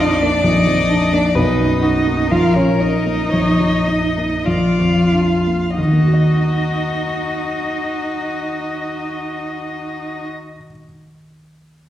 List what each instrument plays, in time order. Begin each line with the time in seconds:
Already playing: grand piano A#1 F2, violin D5
0.00 grand piano D4, cello D#4, violin D#5
0.21 grand piano A#3, cello D4, violin D5
0.43 grand piano A#1, cello D#4, violin D#5
0.67 grand piano F2
0.89 grand piano D4
1.13 grand piano A#3, cello D4, violin D5
1.35 grand piano B1, cello D#4, violin B4 D#5
1.60 grand piano F#2
1.82 grand piano D#4, violin F#4
2.07 grand piano A#3
2.31 grand piano A#1, cello F4, violin A#4 F5
2.55 grand piano A#2, cello C#4, violin C#5
2.80 grand piano D#4, cello D#4, violin D#5
3.06 grand piano A#3
3.32 grand piano A#1, violin C#5
3.60 grand piano A#2
3.87 grand piano D#4, violin D#5
4.17 grand piano A#3
4.45 grand piano A#1, cello F4, violin D5 F5
4.79 grand piano F2
5.14 grand piano D4
5.47 grand piano A#3
5.76 grand piano D#2, cello D#4, violin F#4 D#5
5.85 grand piano D#3
5.92 grand piano A#3
5.99 grand piano D#4
6.06 grand piano F#4
6.13 grand piano D#5